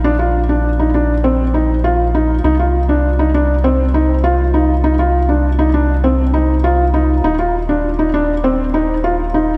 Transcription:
X:1
M:4/4
L:1/16
Q:1/4=100
K:Cm
V:1 name="Felt piano"
D F2 D2 E D2 C2 E2 F2 E2 | E F2 D2 E D2 C2 E2 F2 E2 | E F2 D2 E D2 C2 E2 F2 E2 | E F2 D2 E D2 C2 E2 F2 E2 |]
V:2 name="Analog synth bass" clef=bass
B,,,16 | C,,16- | C,,16 | E,,,16 |]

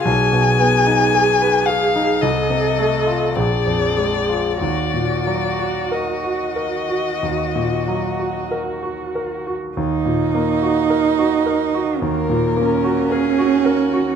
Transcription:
X:1
M:4/4
L:1/16
Q:1/4=53
K:Ebm
V:1 name="Violin"
a6 f2 e4 =d4 | =d4 e8 z4 | z8 B4 A2 G2 |]
V:2 name="Viola"
A8 =A4 _A4 | G16 | z4 B4 z4 B4 |]
V:3 name="Grand piano"
C,, C, C E A c A E =C,, =C, =A, F B,,, F,, _A, F | E,, B,, G, G B G B G E,, B,, G, G B G B G | E,, B,, B, G B G B G E,, B,, B, G B G B G |]
V:4 name="Cello"
z16 | z16 | E8 B,2 D6 |]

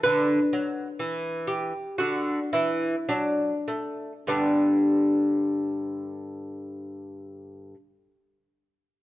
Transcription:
X:1
M:4/4
L:1/8
Q:1/4=51
K:G
V:1 name="Lute"
B3 G F E D2 | [G,,D,B,DG]8 |]
V:2 name="Lute" clef=bass
D, F, E,2 D, E, F, A, | z8 |]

